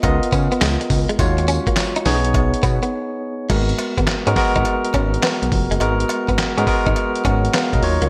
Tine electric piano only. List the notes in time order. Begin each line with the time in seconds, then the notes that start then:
Already playing: B3 F4 A#4 D#5
0.03 B3 F4 A#4 D#5
1.19 G#3 F4 F#4 C#5
2.05 B3 D#4 G#4 C#5
3.50 G#3 A#3 F#4 A#4
3.56 B3
4.27 G#3 B3 F#4 A#4
4.36 G#3 B3 F#4 A#4
5.80 G#3 B3 F#4 A#4
6.57 G#3 B3 F#4 A#4
6.67 G#3 B3 F#4 A#4
7.25 C#5 F#5
7.54 B4 F5
7.73 A#4 D#5
7.82 F#3 D#4 F4 C#5